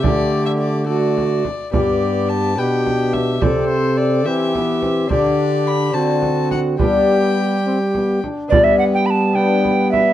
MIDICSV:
0, 0, Header, 1, 7, 480
1, 0, Start_track
1, 0, Key_signature, 1, "major"
1, 0, Tempo, 564972
1, 30, Time_signature, 6, 3, 24, 8
1, 8609, End_track
2, 0, Start_track
2, 0, Title_t, "Violin"
2, 0, Program_c, 0, 40
2, 25, Note_on_c, 0, 74, 85
2, 384, Note_off_c, 0, 74, 0
2, 389, Note_on_c, 0, 76, 69
2, 437, Note_off_c, 0, 76, 0
2, 497, Note_on_c, 0, 74, 70
2, 737, Note_off_c, 0, 74, 0
2, 742, Note_on_c, 0, 74, 73
2, 1454, Note_off_c, 0, 74, 0
2, 1465, Note_on_c, 0, 74, 69
2, 1947, Note_on_c, 0, 81, 75
2, 1960, Note_off_c, 0, 74, 0
2, 2198, Note_on_c, 0, 79, 65
2, 2211, Note_off_c, 0, 81, 0
2, 2663, Note_on_c, 0, 76, 67
2, 2676, Note_off_c, 0, 79, 0
2, 2905, Note_on_c, 0, 74, 62
2, 2918, Note_off_c, 0, 76, 0
2, 3126, Note_off_c, 0, 74, 0
2, 3131, Note_on_c, 0, 72, 74
2, 3376, Note_on_c, 0, 74, 73
2, 3388, Note_off_c, 0, 72, 0
2, 3616, Note_on_c, 0, 76, 75
2, 3629, Note_off_c, 0, 74, 0
2, 4334, Note_off_c, 0, 76, 0
2, 4346, Note_on_c, 0, 74, 79
2, 4815, Note_on_c, 0, 83, 82
2, 4828, Note_off_c, 0, 74, 0
2, 5046, Note_on_c, 0, 81, 70
2, 5058, Note_off_c, 0, 83, 0
2, 5528, Note_off_c, 0, 81, 0
2, 5533, Note_on_c, 0, 78, 65
2, 5601, Note_off_c, 0, 78, 0
2, 5785, Note_on_c, 0, 79, 72
2, 6972, Note_off_c, 0, 79, 0
2, 7232, Note_on_c, 0, 71, 57
2, 7919, Note_off_c, 0, 71, 0
2, 7961, Note_on_c, 0, 71, 58
2, 8609, Note_off_c, 0, 71, 0
2, 8609, End_track
3, 0, Start_track
3, 0, Title_t, "Recorder"
3, 0, Program_c, 1, 74
3, 34, Note_on_c, 1, 67, 60
3, 740, Note_off_c, 1, 67, 0
3, 756, Note_on_c, 1, 66, 50
3, 1225, Note_off_c, 1, 66, 0
3, 1475, Note_on_c, 1, 67, 54
3, 2160, Note_off_c, 1, 67, 0
3, 2199, Note_on_c, 1, 67, 54
3, 2915, Note_on_c, 1, 69, 55
3, 2928, Note_off_c, 1, 67, 0
3, 3629, Note_on_c, 1, 67, 59
3, 3641, Note_off_c, 1, 69, 0
3, 4332, Note_off_c, 1, 67, 0
3, 4338, Note_on_c, 1, 67, 52
3, 5054, Note_on_c, 1, 66, 55
3, 5067, Note_off_c, 1, 67, 0
3, 5758, Note_off_c, 1, 66, 0
3, 5763, Note_on_c, 1, 67, 51
3, 6961, Note_off_c, 1, 67, 0
3, 7219, Note_on_c, 1, 74, 88
3, 7339, Note_on_c, 1, 76, 77
3, 7352, Note_off_c, 1, 74, 0
3, 7460, Note_off_c, 1, 76, 0
3, 7465, Note_on_c, 1, 78, 75
3, 7516, Note_off_c, 1, 78, 0
3, 7596, Note_on_c, 1, 79, 74
3, 7698, Note_on_c, 1, 83, 73
3, 7710, Note_off_c, 1, 79, 0
3, 7735, Note_on_c, 1, 81, 79
3, 7743, Note_off_c, 1, 83, 0
3, 7945, Note_on_c, 1, 79, 75
3, 7958, Note_off_c, 1, 81, 0
3, 8418, Note_off_c, 1, 79, 0
3, 8424, Note_on_c, 1, 76, 77
3, 8609, Note_off_c, 1, 76, 0
3, 8609, End_track
4, 0, Start_track
4, 0, Title_t, "Lute"
4, 0, Program_c, 2, 24
4, 6, Note_on_c, 2, 67, 46
4, 17, Note_on_c, 2, 69, 48
4, 28, Note_on_c, 2, 50, 50
4, 712, Note_on_c, 2, 57, 42
4, 718, Note_off_c, 2, 67, 0
4, 723, Note_on_c, 2, 66, 41
4, 724, Note_off_c, 2, 69, 0
4, 733, Note_on_c, 2, 69, 42
4, 1198, Note_off_c, 2, 50, 0
4, 1432, Note_off_c, 2, 57, 0
4, 1437, Note_off_c, 2, 66, 0
4, 1443, Note_off_c, 2, 69, 0
4, 1453, Note_on_c, 2, 67, 45
4, 1459, Note_on_c, 2, 71, 43
4, 1472, Note_on_c, 2, 43, 48
4, 2158, Note_off_c, 2, 43, 0
4, 2161, Note_off_c, 2, 67, 0
4, 2164, Note_off_c, 2, 71, 0
4, 2171, Note_on_c, 2, 67, 40
4, 2185, Note_on_c, 2, 71, 43
4, 2194, Note_on_c, 2, 47, 48
4, 2875, Note_off_c, 2, 47, 0
4, 2876, Note_off_c, 2, 67, 0
4, 2883, Note_off_c, 2, 71, 0
4, 2892, Note_on_c, 2, 67, 46
4, 2901, Note_on_c, 2, 72, 45
4, 2909, Note_on_c, 2, 48, 50
4, 3590, Note_off_c, 2, 48, 0
4, 3593, Note_off_c, 2, 67, 0
4, 3598, Note_off_c, 2, 72, 0
4, 3608, Note_on_c, 2, 67, 49
4, 3618, Note_on_c, 2, 72, 49
4, 3630, Note_on_c, 2, 52, 54
4, 4306, Note_off_c, 2, 67, 0
4, 4307, Note_off_c, 2, 52, 0
4, 4310, Note_on_c, 2, 62, 47
4, 4314, Note_off_c, 2, 72, 0
4, 4324, Note_on_c, 2, 72, 47
4, 4336, Note_on_c, 2, 50, 50
4, 5015, Note_off_c, 2, 62, 0
4, 5020, Note_off_c, 2, 50, 0
4, 5024, Note_off_c, 2, 72, 0
4, 5025, Note_on_c, 2, 62, 41
4, 5034, Note_on_c, 2, 72, 43
4, 5048, Note_on_c, 2, 50, 47
4, 5742, Note_off_c, 2, 50, 0
4, 5743, Note_off_c, 2, 62, 0
4, 5747, Note_off_c, 2, 72, 0
4, 5764, Note_on_c, 2, 62, 40
4, 5774, Note_on_c, 2, 71, 39
4, 5786, Note_on_c, 2, 55, 46
4, 6963, Note_off_c, 2, 55, 0
4, 7193, Note_off_c, 2, 62, 0
4, 7198, Note_off_c, 2, 71, 0
4, 7205, Note_on_c, 2, 59, 46
4, 7212, Note_on_c, 2, 62, 49
4, 7224, Note_on_c, 2, 71, 46
4, 7235, Note_on_c, 2, 55, 54
4, 7913, Note_off_c, 2, 59, 0
4, 7921, Note_off_c, 2, 62, 0
4, 7923, Note_on_c, 2, 59, 49
4, 7928, Note_off_c, 2, 71, 0
4, 7935, Note_on_c, 2, 62, 50
4, 7949, Note_on_c, 2, 71, 50
4, 8609, Note_off_c, 2, 55, 0
4, 8609, Note_off_c, 2, 59, 0
4, 8609, Note_off_c, 2, 62, 0
4, 8609, Note_off_c, 2, 71, 0
4, 8609, End_track
5, 0, Start_track
5, 0, Title_t, "Trombone"
5, 0, Program_c, 3, 57
5, 30, Note_on_c, 3, 57, 56
5, 737, Note_off_c, 3, 57, 0
5, 752, Note_on_c, 3, 57, 59
5, 1224, Note_off_c, 3, 57, 0
5, 1469, Note_on_c, 3, 59, 55
5, 2190, Note_on_c, 3, 62, 58
5, 2203, Note_off_c, 3, 59, 0
5, 2900, Note_off_c, 3, 62, 0
5, 2905, Note_on_c, 3, 60, 57
5, 3607, Note_off_c, 3, 60, 0
5, 3625, Note_on_c, 3, 60, 68
5, 3867, Note_on_c, 3, 59, 61
5, 3880, Note_off_c, 3, 60, 0
5, 4101, Note_on_c, 3, 60, 59
5, 4113, Note_off_c, 3, 59, 0
5, 4334, Note_off_c, 3, 60, 0
5, 4339, Note_on_c, 3, 62, 60
5, 5056, Note_on_c, 3, 60, 60
5, 5069, Note_off_c, 3, 62, 0
5, 5774, Note_off_c, 3, 60, 0
5, 5779, Note_on_c, 3, 59, 54
5, 6446, Note_off_c, 3, 59, 0
5, 6506, Note_on_c, 3, 60, 66
5, 6616, Note_off_c, 3, 60, 0
5, 6749, Note_on_c, 3, 59, 44
5, 6988, Note_off_c, 3, 59, 0
5, 6996, Note_on_c, 3, 62, 53
5, 7231, Note_off_c, 3, 62, 0
5, 7235, Note_on_c, 3, 59, 61
5, 7921, Note_off_c, 3, 59, 0
5, 7958, Note_on_c, 3, 59, 67
5, 8609, Note_off_c, 3, 59, 0
5, 8609, End_track
6, 0, Start_track
6, 0, Title_t, "Trombone"
6, 0, Program_c, 4, 57
6, 28, Note_on_c, 4, 50, 63
6, 1232, Note_off_c, 4, 50, 0
6, 1469, Note_on_c, 4, 43, 56
6, 2192, Note_on_c, 4, 47, 59
6, 2204, Note_off_c, 4, 43, 0
6, 2904, Note_off_c, 4, 47, 0
6, 2909, Note_on_c, 4, 48, 62
6, 3624, Note_on_c, 4, 52, 62
6, 3637, Note_off_c, 4, 48, 0
6, 4330, Note_off_c, 4, 52, 0
6, 4335, Note_on_c, 4, 50, 66
6, 5039, Note_off_c, 4, 50, 0
6, 5053, Note_on_c, 4, 50, 60
6, 5764, Note_off_c, 4, 50, 0
6, 5778, Note_on_c, 4, 55, 57
6, 6969, Note_off_c, 4, 55, 0
6, 7237, Note_on_c, 4, 55, 67
6, 8609, Note_off_c, 4, 55, 0
6, 8609, End_track
7, 0, Start_track
7, 0, Title_t, "Frame drum"
7, 35, Note_on_c, 9, 64, 70
7, 120, Note_off_c, 9, 64, 0
7, 1001, Note_on_c, 9, 64, 43
7, 1086, Note_off_c, 9, 64, 0
7, 1231, Note_on_c, 9, 64, 48
7, 1316, Note_off_c, 9, 64, 0
7, 1473, Note_on_c, 9, 64, 64
7, 1558, Note_off_c, 9, 64, 0
7, 2435, Note_on_c, 9, 64, 49
7, 2520, Note_off_c, 9, 64, 0
7, 2667, Note_on_c, 9, 64, 49
7, 2752, Note_off_c, 9, 64, 0
7, 2905, Note_on_c, 9, 64, 73
7, 2990, Note_off_c, 9, 64, 0
7, 3868, Note_on_c, 9, 64, 47
7, 3953, Note_off_c, 9, 64, 0
7, 4100, Note_on_c, 9, 64, 45
7, 4185, Note_off_c, 9, 64, 0
7, 4337, Note_on_c, 9, 64, 62
7, 4422, Note_off_c, 9, 64, 0
7, 5290, Note_on_c, 9, 64, 44
7, 5374, Note_off_c, 9, 64, 0
7, 5533, Note_on_c, 9, 64, 48
7, 5618, Note_off_c, 9, 64, 0
7, 5772, Note_on_c, 9, 64, 62
7, 5857, Note_off_c, 9, 64, 0
7, 6752, Note_on_c, 9, 64, 44
7, 6837, Note_off_c, 9, 64, 0
7, 7000, Note_on_c, 9, 64, 45
7, 7085, Note_off_c, 9, 64, 0
7, 7240, Note_on_c, 9, 64, 70
7, 7325, Note_off_c, 9, 64, 0
7, 8200, Note_on_c, 9, 64, 46
7, 8285, Note_off_c, 9, 64, 0
7, 8442, Note_on_c, 9, 64, 51
7, 8527, Note_off_c, 9, 64, 0
7, 8609, End_track
0, 0, End_of_file